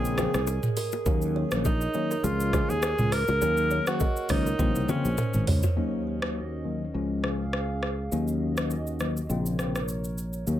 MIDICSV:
0, 0, Header, 1, 7, 480
1, 0, Start_track
1, 0, Tempo, 588235
1, 867, Time_signature, 4, 2, 24, 8
1, 8647, End_track
2, 0, Start_track
2, 0, Title_t, "Kalimba"
2, 0, Program_c, 0, 108
2, 150, Note_on_c, 0, 68, 89
2, 217, Note_off_c, 0, 68, 0
2, 629, Note_on_c, 0, 70, 80
2, 697, Note_off_c, 0, 70, 0
2, 868, Note_on_c, 0, 70, 102
2, 936, Note_off_c, 0, 70, 0
2, 1110, Note_on_c, 0, 73, 80
2, 1177, Note_off_c, 0, 73, 0
2, 1350, Note_on_c, 0, 75, 81
2, 1417, Note_off_c, 0, 75, 0
2, 1590, Note_on_c, 0, 73, 89
2, 1658, Note_off_c, 0, 73, 0
2, 1723, Note_on_c, 0, 70, 80
2, 1777, Note_off_c, 0, 70, 0
2, 1830, Note_on_c, 0, 68, 85
2, 1898, Note_off_c, 0, 68, 0
2, 2071, Note_on_c, 0, 68, 89
2, 2138, Note_off_c, 0, 68, 0
2, 2551, Note_on_c, 0, 70, 82
2, 2618, Note_off_c, 0, 70, 0
2, 2793, Note_on_c, 0, 70, 99
2, 2860, Note_off_c, 0, 70, 0
2, 3030, Note_on_c, 0, 73, 78
2, 3097, Note_off_c, 0, 73, 0
2, 3271, Note_on_c, 0, 75, 81
2, 3338, Note_off_c, 0, 75, 0
2, 3511, Note_on_c, 0, 73, 89
2, 3578, Note_off_c, 0, 73, 0
2, 3643, Note_on_c, 0, 70, 77
2, 3697, Note_off_c, 0, 70, 0
2, 3751, Note_on_c, 0, 72, 85
2, 3818, Note_off_c, 0, 72, 0
2, 3991, Note_on_c, 0, 72, 88
2, 4058, Note_off_c, 0, 72, 0
2, 4470, Note_on_c, 0, 73, 82
2, 4538, Note_off_c, 0, 73, 0
2, 8647, End_track
3, 0, Start_track
3, 0, Title_t, "Analog synth pad"
3, 0, Program_c, 1, 89
3, 4707, Note_on_c, 1, 61, 78
3, 4707, Note_on_c, 1, 66, 69
3, 4707, Note_on_c, 1, 75, 83
3, 5657, Note_off_c, 1, 66, 0
3, 5657, Note_off_c, 1, 75, 0
3, 5668, Note_on_c, 1, 77, 84
3, 5669, Note_on_c, 1, 68, 71
3, 6607, Note_off_c, 1, 61, 0
3, 6618, Note_off_c, 1, 68, 0
3, 6618, Note_off_c, 1, 77, 0
3, 6626, Note_on_c, 1, 66, 71
3, 6627, Note_on_c, 1, 61, 80
3, 6627, Note_on_c, 1, 75, 87
3, 7577, Note_off_c, 1, 61, 0
3, 7577, Note_off_c, 1, 66, 0
3, 7577, Note_off_c, 1, 75, 0
3, 7585, Note_on_c, 1, 48, 73
3, 7585, Note_on_c, 1, 70, 66
3, 7586, Note_on_c, 1, 73, 81
3, 8536, Note_off_c, 1, 48, 0
3, 8536, Note_off_c, 1, 70, 0
3, 8536, Note_off_c, 1, 73, 0
3, 8544, Note_on_c, 1, 66, 71
3, 8545, Note_on_c, 1, 61, 80
3, 8546, Note_on_c, 1, 75, 86
3, 8647, Note_off_c, 1, 61, 0
3, 8647, Note_off_c, 1, 66, 0
3, 8647, Note_off_c, 1, 75, 0
3, 8647, End_track
4, 0, Start_track
4, 0, Title_t, "Alto saxophone"
4, 0, Program_c, 2, 65
4, 0, Note_on_c, 2, 68, 114
4, 626, Note_off_c, 2, 68, 0
4, 1348, Note_on_c, 2, 63, 97
4, 1827, Note_on_c, 2, 65, 107
4, 1839, Note_off_c, 2, 63, 0
4, 2201, Note_on_c, 2, 68, 107
4, 2213, Note_off_c, 2, 65, 0
4, 2548, Note_on_c, 2, 70, 118
4, 2560, Note_off_c, 2, 68, 0
4, 3159, Note_off_c, 2, 70, 0
4, 3163, Note_on_c, 2, 66, 97
4, 3511, Note_on_c, 2, 63, 101
4, 3523, Note_off_c, 2, 66, 0
4, 3994, Note_on_c, 2, 61, 85
4, 4006, Note_off_c, 2, 63, 0
4, 4470, Note_off_c, 2, 61, 0
4, 8647, End_track
5, 0, Start_track
5, 0, Title_t, "Tine electric piano"
5, 0, Program_c, 3, 4
5, 0, Note_on_c, 3, 49, 93
5, 0, Note_on_c, 3, 53, 84
5, 0, Note_on_c, 3, 58, 84
5, 0, Note_on_c, 3, 60, 105
5, 128, Note_off_c, 3, 49, 0
5, 129, Note_off_c, 3, 53, 0
5, 130, Note_off_c, 3, 58, 0
5, 131, Note_off_c, 3, 60, 0
5, 142, Note_on_c, 3, 49, 79
5, 145, Note_on_c, 3, 53, 72
5, 146, Note_on_c, 3, 58, 73
5, 147, Note_on_c, 3, 60, 88
5, 297, Note_off_c, 3, 49, 0
5, 298, Note_off_c, 3, 53, 0
5, 299, Note_off_c, 3, 58, 0
5, 300, Note_off_c, 3, 60, 0
5, 863, Note_on_c, 3, 51, 100
5, 864, Note_on_c, 3, 54, 91
5, 866, Note_on_c, 3, 58, 88
5, 868, Note_on_c, 3, 61, 110
5, 1205, Note_off_c, 3, 51, 0
5, 1206, Note_off_c, 3, 54, 0
5, 1206, Note_off_c, 3, 58, 0
5, 1207, Note_off_c, 3, 61, 0
5, 1235, Note_on_c, 3, 51, 78
5, 1236, Note_on_c, 3, 54, 71
5, 1238, Note_on_c, 3, 58, 73
5, 1240, Note_on_c, 3, 61, 87
5, 1370, Note_off_c, 3, 51, 0
5, 1371, Note_off_c, 3, 54, 0
5, 1372, Note_off_c, 3, 58, 0
5, 1373, Note_off_c, 3, 61, 0
5, 1583, Note_on_c, 3, 51, 80
5, 1585, Note_on_c, 3, 54, 73
5, 1586, Note_on_c, 3, 58, 75
5, 1588, Note_on_c, 3, 61, 86
5, 1738, Note_off_c, 3, 51, 0
5, 1738, Note_off_c, 3, 54, 0
5, 1739, Note_off_c, 3, 58, 0
5, 1740, Note_off_c, 3, 61, 0
5, 1823, Note_on_c, 3, 49, 98
5, 1824, Note_on_c, 3, 53, 88
5, 1826, Note_on_c, 3, 56, 89
5, 1827, Note_on_c, 3, 61, 107
5, 2047, Note_off_c, 3, 49, 0
5, 2048, Note_off_c, 3, 53, 0
5, 2049, Note_off_c, 3, 56, 0
5, 2050, Note_off_c, 3, 61, 0
5, 2063, Note_on_c, 3, 49, 80
5, 2064, Note_on_c, 3, 53, 73
5, 2066, Note_on_c, 3, 56, 73
5, 2067, Note_on_c, 3, 61, 90
5, 2217, Note_off_c, 3, 49, 0
5, 2218, Note_off_c, 3, 53, 0
5, 2219, Note_off_c, 3, 56, 0
5, 2220, Note_off_c, 3, 61, 0
5, 2785, Note_on_c, 3, 51, 96
5, 2786, Note_on_c, 3, 54, 93
5, 2788, Note_on_c, 3, 58, 94
5, 2789, Note_on_c, 3, 61, 111
5, 3126, Note_off_c, 3, 51, 0
5, 3126, Note_off_c, 3, 54, 0
5, 3127, Note_off_c, 3, 58, 0
5, 3128, Note_off_c, 3, 61, 0
5, 3156, Note_on_c, 3, 51, 79
5, 3158, Note_on_c, 3, 54, 72
5, 3160, Note_on_c, 3, 58, 70
5, 3161, Note_on_c, 3, 61, 82
5, 3291, Note_off_c, 3, 51, 0
5, 3292, Note_off_c, 3, 54, 0
5, 3293, Note_off_c, 3, 58, 0
5, 3293, Note_off_c, 3, 61, 0
5, 3503, Note_on_c, 3, 51, 79
5, 3505, Note_on_c, 3, 54, 69
5, 3506, Note_on_c, 3, 58, 73
5, 3508, Note_on_c, 3, 61, 84
5, 3658, Note_off_c, 3, 51, 0
5, 3659, Note_off_c, 3, 54, 0
5, 3659, Note_off_c, 3, 58, 0
5, 3660, Note_off_c, 3, 61, 0
5, 3743, Note_on_c, 3, 49, 94
5, 3744, Note_on_c, 3, 53, 86
5, 3746, Note_on_c, 3, 58, 83
5, 3747, Note_on_c, 3, 60, 102
5, 3967, Note_off_c, 3, 49, 0
5, 3968, Note_off_c, 3, 53, 0
5, 3969, Note_off_c, 3, 58, 0
5, 3969, Note_off_c, 3, 60, 0
5, 3983, Note_on_c, 3, 49, 76
5, 3985, Note_on_c, 3, 53, 69
5, 3986, Note_on_c, 3, 58, 69
5, 3988, Note_on_c, 3, 60, 88
5, 4138, Note_off_c, 3, 49, 0
5, 4139, Note_off_c, 3, 53, 0
5, 4139, Note_off_c, 3, 58, 0
5, 4140, Note_off_c, 3, 60, 0
5, 4702, Note_on_c, 3, 51, 90
5, 4703, Note_on_c, 3, 54, 81
5, 4705, Note_on_c, 3, 58, 79
5, 4707, Note_on_c, 3, 61, 101
5, 5044, Note_off_c, 3, 51, 0
5, 5045, Note_off_c, 3, 54, 0
5, 5046, Note_off_c, 3, 58, 0
5, 5047, Note_off_c, 3, 61, 0
5, 5074, Note_on_c, 3, 51, 70
5, 5076, Note_on_c, 3, 54, 64
5, 5077, Note_on_c, 3, 58, 62
5, 5080, Note_on_c, 3, 61, 81
5, 5210, Note_off_c, 3, 51, 0
5, 5211, Note_off_c, 3, 54, 0
5, 5211, Note_off_c, 3, 58, 0
5, 5213, Note_off_c, 3, 61, 0
5, 5421, Note_on_c, 3, 51, 70
5, 5423, Note_on_c, 3, 54, 65
5, 5425, Note_on_c, 3, 58, 64
5, 5426, Note_on_c, 3, 61, 75
5, 5577, Note_off_c, 3, 51, 0
5, 5578, Note_off_c, 3, 54, 0
5, 5579, Note_off_c, 3, 58, 0
5, 5579, Note_off_c, 3, 61, 0
5, 5663, Note_on_c, 3, 49, 89
5, 5664, Note_on_c, 3, 53, 78
5, 5666, Note_on_c, 3, 56, 75
5, 5667, Note_on_c, 3, 61, 95
5, 5887, Note_off_c, 3, 49, 0
5, 5888, Note_off_c, 3, 53, 0
5, 5889, Note_off_c, 3, 56, 0
5, 5889, Note_off_c, 3, 61, 0
5, 5902, Note_on_c, 3, 49, 71
5, 5904, Note_on_c, 3, 53, 66
5, 5905, Note_on_c, 3, 56, 62
5, 5907, Note_on_c, 3, 61, 80
5, 6057, Note_off_c, 3, 49, 0
5, 6058, Note_off_c, 3, 53, 0
5, 6058, Note_off_c, 3, 56, 0
5, 6060, Note_off_c, 3, 61, 0
5, 6623, Note_on_c, 3, 51, 87
5, 6625, Note_on_c, 3, 54, 81
5, 6626, Note_on_c, 3, 58, 81
5, 6627, Note_on_c, 3, 61, 102
5, 6965, Note_off_c, 3, 51, 0
5, 6966, Note_off_c, 3, 54, 0
5, 6966, Note_off_c, 3, 58, 0
5, 6967, Note_off_c, 3, 61, 0
5, 6995, Note_on_c, 3, 51, 70
5, 6997, Note_on_c, 3, 54, 67
5, 6998, Note_on_c, 3, 58, 65
5, 7000, Note_on_c, 3, 61, 80
5, 7130, Note_off_c, 3, 51, 0
5, 7131, Note_off_c, 3, 54, 0
5, 7132, Note_off_c, 3, 58, 0
5, 7133, Note_off_c, 3, 61, 0
5, 7344, Note_on_c, 3, 51, 74
5, 7346, Note_on_c, 3, 54, 65
5, 7347, Note_on_c, 3, 58, 65
5, 7349, Note_on_c, 3, 61, 78
5, 7498, Note_off_c, 3, 51, 0
5, 7499, Note_off_c, 3, 54, 0
5, 7499, Note_off_c, 3, 58, 0
5, 7501, Note_off_c, 3, 61, 0
5, 7583, Note_on_c, 3, 49, 90
5, 7585, Note_on_c, 3, 53, 81
5, 7586, Note_on_c, 3, 58, 79
5, 7588, Note_on_c, 3, 60, 93
5, 7807, Note_off_c, 3, 49, 0
5, 7808, Note_off_c, 3, 53, 0
5, 7809, Note_off_c, 3, 58, 0
5, 7810, Note_off_c, 3, 60, 0
5, 7824, Note_on_c, 3, 49, 69
5, 7826, Note_on_c, 3, 53, 64
5, 7828, Note_on_c, 3, 58, 62
5, 7829, Note_on_c, 3, 60, 78
5, 7978, Note_off_c, 3, 49, 0
5, 7979, Note_off_c, 3, 53, 0
5, 7980, Note_off_c, 3, 58, 0
5, 7980, Note_off_c, 3, 60, 0
5, 8544, Note_on_c, 3, 51, 90
5, 8545, Note_on_c, 3, 54, 80
5, 8547, Note_on_c, 3, 58, 84
5, 8549, Note_on_c, 3, 61, 95
5, 8647, Note_off_c, 3, 51, 0
5, 8647, Note_off_c, 3, 54, 0
5, 8647, Note_off_c, 3, 58, 0
5, 8647, Note_off_c, 3, 61, 0
5, 8647, End_track
6, 0, Start_track
6, 0, Title_t, "Fretless electric bass"
6, 0, Program_c, 4, 35
6, 0, Note_on_c, 4, 34, 107
6, 204, Note_off_c, 4, 34, 0
6, 279, Note_on_c, 4, 36, 94
6, 471, Note_off_c, 4, 36, 0
6, 866, Note_on_c, 4, 39, 110
6, 1164, Note_off_c, 4, 39, 0
6, 1238, Note_on_c, 4, 34, 89
6, 1517, Note_off_c, 4, 34, 0
6, 1825, Note_on_c, 4, 37, 102
6, 2124, Note_off_c, 4, 37, 0
6, 2199, Note_on_c, 4, 39, 94
6, 2391, Note_off_c, 4, 39, 0
6, 2440, Note_on_c, 4, 37, 92
6, 2632, Note_off_c, 4, 37, 0
6, 2679, Note_on_c, 4, 37, 96
6, 2766, Note_off_c, 4, 37, 0
6, 2787, Note_on_c, 4, 39, 114
6, 3085, Note_off_c, 4, 39, 0
6, 3507, Note_on_c, 4, 37, 86
6, 3699, Note_off_c, 4, 37, 0
6, 3746, Note_on_c, 4, 34, 95
6, 3852, Note_off_c, 4, 34, 0
6, 3880, Note_on_c, 4, 36, 88
6, 3966, Note_off_c, 4, 36, 0
6, 4119, Note_on_c, 4, 34, 94
6, 4206, Note_off_c, 4, 34, 0
6, 4359, Note_on_c, 4, 32, 86
6, 4445, Note_off_c, 4, 32, 0
6, 4467, Note_on_c, 4, 37, 97
6, 4573, Note_off_c, 4, 37, 0
6, 4707, Note_on_c, 4, 39, 73
6, 5634, Note_off_c, 4, 39, 0
6, 5666, Note_on_c, 4, 37, 76
6, 6594, Note_off_c, 4, 37, 0
6, 6626, Note_on_c, 4, 39, 76
6, 7553, Note_off_c, 4, 39, 0
6, 7585, Note_on_c, 4, 34, 82
6, 8513, Note_off_c, 4, 34, 0
6, 8545, Note_on_c, 4, 39, 78
6, 8647, Note_off_c, 4, 39, 0
6, 8647, End_track
7, 0, Start_track
7, 0, Title_t, "Drums"
7, 39, Note_on_c, 9, 82, 62
7, 120, Note_off_c, 9, 82, 0
7, 144, Note_on_c, 9, 37, 97
7, 147, Note_on_c, 9, 82, 51
7, 151, Note_on_c, 9, 61, 80
7, 151, Note_on_c, 9, 64, 81
7, 226, Note_off_c, 9, 37, 0
7, 228, Note_off_c, 9, 82, 0
7, 233, Note_off_c, 9, 61, 0
7, 233, Note_off_c, 9, 64, 0
7, 279, Note_on_c, 9, 82, 50
7, 280, Note_on_c, 9, 37, 93
7, 361, Note_off_c, 9, 82, 0
7, 362, Note_off_c, 9, 37, 0
7, 383, Note_on_c, 9, 82, 76
7, 386, Note_on_c, 9, 60, 79
7, 465, Note_off_c, 9, 82, 0
7, 468, Note_off_c, 9, 60, 0
7, 514, Note_on_c, 9, 82, 57
7, 515, Note_on_c, 9, 45, 101
7, 596, Note_off_c, 9, 45, 0
7, 596, Note_off_c, 9, 82, 0
7, 626, Note_on_c, 9, 46, 75
7, 626, Note_on_c, 9, 82, 54
7, 629, Note_on_c, 9, 60, 51
7, 707, Note_off_c, 9, 46, 0
7, 707, Note_off_c, 9, 82, 0
7, 711, Note_off_c, 9, 60, 0
7, 751, Note_on_c, 9, 82, 52
7, 758, Note_on_c, 9, 61, 81
7, 832, Note_off_c, 9, 82, 0
7, 840, Note_off_c, 9, 61, 0
7, 862, Note_on_c, 9, 64, 70
7, 865, Note_on_c, 9, 82, 74
7, 866, Note_on_c, 9, 36, 122
7, 944, Note_off_c, 9, 64, 0
7, 947, Note_off_c, 9, 36, 0
7, 947, Note_off_c, 9, 82, 0
7, 993, Note_on_c, 9, 82, 44
7, 1075, Note_off_c, 9, 82, 0
7, 1234, Note_on_c, 9, 82, 54
7, 1238, Note_on_c, 9, 37, 120
7, 1242, Note_on_c, 9, 60, 50
7, 1316, Note_off_c, 9, 82, 0
7, 1320, Note_off_c, 9, 37, 0
7, 1324, Note_off_c, 9, 60, 0
7, 1344, Note_on_c, 9, 82, 74
7, 1347, Note_on_c, 9, 36, 98
7, 1351, Note_on_c, 9, 60, 85
7, 1425, Note_off_c, 9, 82, 0
7, 1429, Note_off_c, 9, 36, 0
7, 1433, Note_off_c, 9, 60, 0
7, 1478, Note_on_c, 9, 82, 53
7, 1560, Note_off_c, 9, 82, 0
7, 1581, Note_on_c, 9, 82, 44
7, 1663, Note_off_c, 9, 82, 0
7, 1723, Note_on_c, 9, 82, 54
7, 1805, Note_off_c, 9, 82, 0
7, 1827, Note_on_c, 9, 64, 87
7, 1828, Note_on_c, 9, 82, 73
7, 1909, Note_off_c, 9, 64, 0
7, 1910, Note_off_c, 9, 82, 0
7, 1959, Note_on_c, 9, 82, 67
7, 2041, Note_off_c, 9, 82, 0
7, 2066, Note_on_c, 9, 36, 92
7, 2066, Note_on_c, 9, 37, 92
7, 2068, Note_on_c, 9, 82, 52
7, 2072, Note_on_c, 9, 61, 79
7, 2072, Note_on_c, 9, 64, 82
7, 2148, Note_off_c, 9, 36, 0
7, 2148, Note_off_c, 9, 37, 0
7, 2150, Note_off_c, 9, 82, 0
7, 2154, Note_off_c, 9, 61, 0
7, 2154, Note_off_c, 9, 64, 0
7, 2201, Note_on_c, 9, 82, 50
7, 2283, Note_off_c, 9, 82, 0
7, 2305, Note_on_c, 9, 82, 75
7, 2306, Note_on_c, 9, 37, 97
7, 2307, Note_on_c, 9, 60, 84
7, 2386, Note_off_c, 9, 82, 0
7, 2388, Note_off_c, 9, 37, 0
7, 2389, Note_off_c, 9, 60, 0
7, 2436, Note_on_c, 9, 45, 101
7, 2436, Note_on_c, 9, 82, 57
7, 2517, Note_off_c, 9, 82, 0
7, 2518, Note_off_c, 9, 45, 0
7, 2547, Note_on_c, 9, 37, 86
7, 2548, Note_on_c, 9, 46, 77
7, 2548, Note_on_c, 9, 82, 54
7, 2550, Note_on_c, 9, 60, 52
7, 2629, Note_off_c, 9, 37, 0
7, 2630, Note_off_c, 9, 46, 0
7, 2630, Note_off_c, 9, 82, 0
7, 2631, Note_off_c, 9, 60, 0
7, 2673, Note_on_c, 9, 82, 54
7, 2681, Note_on_c, 9, 61, 79
7, 2755, Note_off_c, 9, 82, 0
7, 2762, Note_off_c, 9, 61, 0
7, 2783, Note_on_c, 9, 64, 68
7, 2788, Note_on_c, 9, 82, 73
7, 2864, Note_off_c, 9, 64, 0
7, 2869, Note_off_c, 9, 82, 0
7, 2914, Note_on_c, 9, 82, 43
7, 2996, Note_off_c, 9, 82, 0
7, 3025, Note_on_c, 9, 82, 52
7, 3106, Note_off_c, 9, 82, 0
7, 3156, Note_on_c, 9, 82, 56
7, 3160, Note_on_c, 9, 37, 123
7, 3163, Note_on_c, 9, 60, 49
7, 3238, Note_off_c, 9, 82, 0
7, 3242, Note_off_c, 9, 37, 0
7, 3245, Note_off_c, 9, 60, 0
7, 3264, Note_on_c, 9, 82, 72
7, 3268, Note_on_c, 9, 36, 101
7, 3272, Note_on_c, 9, 60, 83
7, 3346, Note_off_c, 9, 82, 0
7, 3350, Note_off_c, 9, 36, 0
7, 3353, Note_off_c, 9, 60, 0
7, 3398, Note_on_c, 9, 82, 52
7, 3480, Note_off_c, 9, 82, 0
7, 3501, Note_on_c, 9, 46, 64
7, 3501, Note_on_c, 9, 82, 48
7, 3507, Note_on_c, 9, 36, 90
7, 3508, Note_on_c, 9, 37, 91
7, 3583, Note_off_c, 9, 46, 0
7, 3583, Note_off_c, 9, 82, 0
7, 3589, Note_off_c, 9, 36, 0
7, 3590, Note_off_c, 9, 37, 0
7, 3643, Note_on_c, 9, 82, 50
7, 3725, Note_off_c, 9, 82, 0
7, 3746, Note_on_c, 9, 36, 98
7, 3747, Note_on_c, 9, 48, 60
7, 3747, Note_on_c, 9, 64, 89
7, 3749, Note_on_c, 9, 82, 76
7, 3828, Note_off_c, 9, 36, 0
7, 3829, Note_off_c, 9, 48, 0
7, 3829, Note_off_c, 9, 64, 0
7, 3830, Note_off_c, 9, 82, 0
7, 3880, Note_on_c, 9, 82, 66
7, 3961, Note_off_c, 9, 82, 0
7, 3987, Note_on_c, 9, 47, 73
7, 3988, Note_on_c, 9, 82, 53
7, 3991, Note_on_c, 9, 61, 80
7, 3991, Note_on_c, 9, 64, 76
7, 4068, Note_off_c, 9, 47, 0
7, 4070, Note_off_c, 9, 82, 0
7, 4073, Note_off_c, 9, 61, 0
7, 4073, Note_off_c, 9, 64, 0
7, 4121, Note_on_c, 9, 82, 51
7, 4203, Note_off_c, 9, 82, 0
7, 4224, Note_on_c, 9, 82, 75
7, 4226, Note_on_c, 9, 45, 92
7, 4227, Note_on_c, 9, 60, 81
7, 4306, Note_off_c, 9, 82, 0
7, 4308, Note_off_c, 9, 45, 0
7, 4309, Note_off_c, 9, 60, 0
7, 4355, Note_on_c, 9, 82, 55
7, 4358, Note_on_c, 9, 45, 80
7, 4437, Note_off_c, 9, 82, 0
7, 4439, Note_off_c, 9, 45, 0
7, 4466, Note_on_c, 9, 43, 106
7, 4466, Note_on_c, 9, 46, 78
7, 4471, Note_on_c, 9, 60, 52
7, 4548, Note_off_c, 9, 43, 0
7, 4548, Note_off_c, 9, 46, 0
7, 4552, Note_off_c, 9, 60, 0
7, 4592, Note_on_c, 9, 82, 53
7, 4598, Note_on_c, 9, 43, 96
7, 4600, Note_on_c, 9, 61, 78
7, 4673, Note_off_c, 9, 82, 0
7, 4680, Note_off_c, 9, 43, 0
7, 4681, Note_off_c, 9, 61, 0
7, 5078, Note_on_c, 9, 37, 107
7, 5160, Note_off_c, 9, 37, 0
7, 5905, Note_on_c, 9, 37, 85
7, 5987, Note_off_c, 9, 37, 0
7, 6146, Note_on_c, 9, 37, 95
7, 6228, Note_off_c, 9, 37, 0
7, 6386, Note_on_c, 9, 37, 78
7, 6468, Note_off_c, 9, 37, 0
7, 6626, Note_on_c, 9, 82, 64
7, 6708, Note_off_c, 9, 82, 0
7, 6753, Note_on_c, 9, 82, 40
7, 6835, Note_off_c, 9, 82, 0
7, 6994, Note_on_c, 9, 82, 48
7, 6998, Note_on_c, 9, 37, 113
7, 7076, Note_off_c, 9, 82, 0
7, 7080, Note_off_c, 9, 37, 0
7, 7103, Note_on_c, 9, 82, 67
7, 7185, Note_off_c, 9, 82, 0
7, 7238, Note_on_c, 9, 82, 49
7, 7319, Note_off_c, 9, 82, 0
7, 7341, Note_on_c, 9, 82, 41
7, 7348, Note_on_c, 9, 37, 83
7, 7423, Note_off_c, 9, 82, 0
7, 7430, Note_off_c, 9, 37, 0
7, 7482, Note_on_c, 9, 82, 45
7, 7564, Note_off_c, 9, 82, 0
7, 7588, Note_on_c, 9, 82, 70
7, 7669, Note_off_c, 9, 82, 0
7, 7719, Note_on_c, 9, 82, 59
7, 7800, Note_off_c, 9, 82, 0
7, 7825, Note_on_c, 9, 37, 85
7, 7827, Note_on_c, 9, 82, 48
7, 7906, Note_off_c, 9, 37, 0
7, 7909, Note_off_c, 9, 82, 0
7, 7960, Note_on_c, 9, 82, 45
7, 7961, Note_on_c, 9, 37, 85
7, 8041, Note_off_c, 9, 82, 0
7, 8042, Note_off_c, 9, 37, 0
7, 8064, Note_on_c, 9, 82, 71
7, 8145, Note_off_c, 9, 82, 0
7, 8195, Note_on_c, 9, 82, 50
7, 8276, Note_off_c, 9, 82, 0
7, 8305, Note_on_c, 9, 82, 48
7, 8387, Note_off_c, 9, 82, 0
7, 8430, Note_on_c, 9, 82, 49
7, 8512, Note_off_c, 9, 82, 0
7, 8545, Note_on_c, 9, 82, 67
7, 8627, Note_off_c, 9, 82, 0
7, 8647, End_track
0, 0, End_of_file